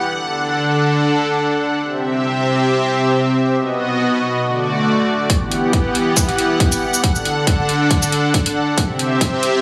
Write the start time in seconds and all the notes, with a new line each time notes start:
Already playing: F#5
0.08 D3 D4 A4
1.82 C3 C4 G4 E5
3.56 B2 B3 F#4 D#5
4.43 D3 A3 F#4 D5
5.30 E3 B3 G4 F#5, kick, closed hi-hat
5.52 closed hi-hat
5.73 kick, closed hi-hat
5.95 closed hi-hat
6.17 kick, closed hi-hat, shaker
6.29 closed hi-hat
6.38 closed hi-hat
6.60 kick, closed hi-hat
6.72 closed hi-hat, shaker
6.94 shaker
7.04 D3 D4 A4, kick, closed hi-hat
7.16 shaker
7.25 closed hi-hat
7.47 kick, closed hi-hat
7.69 closed hi-hat
7.91 kick, closed hi-hat
8.03 closed hi-hat, shaker
8.12 closed hi-hat
8.34 kick, closed hi-hat
8.46 closed hi-hat
8.78 C3 C4 G4 E5, kick, closed hi-hat
8.99 closed hi-hat
9.21 kick, closed hi-hat
9.43 closed hi-hat